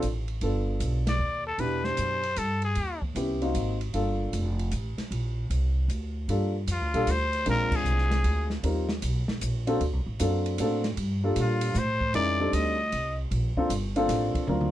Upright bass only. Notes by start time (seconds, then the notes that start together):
0.03 A1
0.41 G1
0.80 B1
1.19 D#2
1.58 E2
1.98 F#2
2.37 G2
2.76 D#2
3.15 C2
3.54 G#1
3.94 G1
4.33 F1
4.72 A1
4.99 muted upright bass stroke
5.11 A#1
5.50 C2
5.88 D2
6.28 G2
6.67 F2
6.81 D2
6.94 A#1
7.07 D2
7.46 A#1
7.71 muted upright bass stroke
7.85 C2
8.24 D2
8.63 D#2
9.02 B1
9.29 muted upright bass stroke
9.41 A#1
9.81 D2
9.93 C2
10.06 A1
10.20 F#2
10.59 A2
10.97 G2
11.36 A#2
11.75 A2
12.14 F2
12.53 D2
12.93 C2
13.31 A#1
13.57 muted upright bass stroke
13.69 G1
14.08 A1
14.35 muted upright bass stroke
14.47 D2